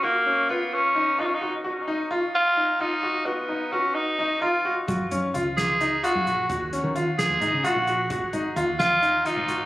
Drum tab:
HH |-------|-------|-------|xxxxxxx|
SD |-------|-------|-------|---o---|
BD |-------|-------|-------|o------|

HH |xxxxxxx|xxxxxxx|
SD |-o-o---|---o-o-|
BD |o------|o------|